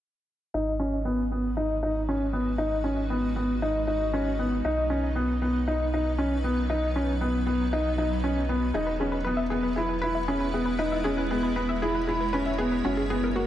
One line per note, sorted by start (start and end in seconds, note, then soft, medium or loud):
0.53 4.62 G#1 medium
0.53 4.60 G#3 medium
0.53 8.70 D#4 medium
0.53 0.70 D#4 medium
0.53 4.60 F#4 medium
0.53 4.60 B4 medium
0.79 0.95 C#4 medium
1.05 1.21 B3 medium
1.31 1.47 B3 medium
1.57 1.73 D#4 medium
1.83 1.99 D#4 medium
2.09 2.24 C#4 medium
2.33 2.49 B3 medium
2.58 2.74 D#4 medium
2.84 3.00 C#4 medium
3.10 3.26 B3 medium
3.36 3.52 B3 medium
3.62 3.78 D#4 medium
3.87 4.03 D#4 medium
4.13 4.29 C#4 medium
4.39 4.55 B3 medium
4.64 8.72 B1 medium
4.64 8.71 F#3 medium
4.64 12.81 B3 medium
4.64 4.81 D#4 medium
4.64 8.71 B4 medium
4.90 5.06 C#4 medium
5.16 5.31 B3 medium
5.42 5.57 B3 medium
5.68 5.83 D#4 medium
5.94 6.09 D#4 medium
6.18 6.34 C#4 medium
6.44 6.60 B3 medium
6.70 6.86 D#4 medium
6.96 7.11 C#4 medium
7.21 7.37 B3 medium
7.46 7.62 B3 medium
7.73 7.88 D#4 medium
7.98 8.14 D#4 medium
8.24 8.40 C#4 medium
8.49 8.65 B3 medium
8.74 12.82 E1 medium
8.74 13.47 G#3 medium
8.74 8.91 D#4 medium
8.74 12.81 E4 medium
8.74 8.86 G#4 medium
8.74 10.77 B4 medium
8.87 8.94 B4 medium
9.00 9.16 C#4 medium
9.00 9.07 G#4 medium
9.12 9.20 B4 medium
9.25 9.42 B3 medium
9.25 9.33 B4 medium
9.37 9.42 E5 medium
9.50 9.67 B3 medium
9.50 9.62 G#4 medium
9.63 9.71 B4 medium
9.76 9.93 E4 medium
9.76 9.84 G#4 medium
9.89 9.97 B4 medium
10.02 10.19 E4 medium
10.02 10.10 B4 loud
10.15 10.20 E5 medium
10.28 10.44 C#4 medium
10.28 10.39 G#4 medium
10.40 10.48 B4 medium
10.54 10.70 B3 medium
10.54 10.61 G#4 medium
10.66 10.74 B4 medium
10.79 10.95 D#4 medium
10.79 10.87 B4 medium
10.79 12.83 C#5 medium
10.92 10.97 E5 medium
11.04 11.21 C#4 medium
11.04 11.16 G#4 loud
11.18 11.25 B4 medium
11.31 11.47 B3 medium
11.31 11.38 G#4 medium
11.43 11.51 B4 medium
11.56 11.72 B3 medium
11.56 11.64 B4 medium
11.69 11.74 E5 medium
11.82 11.98 E4 medium
11.82 11.93 G#4 medium
11.95 12.03 B4 medium
12.07 12.24 E4 medium
12.07 12.15 G#4 medium
12.20 12.28 B4 medium
12.33 12.50 C#4 medium
12.33 12.41 B4 medium
12.46 12.50 E5 medium
12.58 12.75 B3 medium
12.58 12.70 G#4 medium
12.72 12.79 B4 medium
12.85 13.47 F#1 medium
12.85 13.01 C#4 medium
12.85 12.92 F#4 medium
12.97 13.05 G#4 medium
13.10 13.26 B3 medium
13.10 13.18 G#4 medium
13.24 13.28 A#4 medium
13.36 13.47 A#3 medium
13.36 13.47 F#4 medium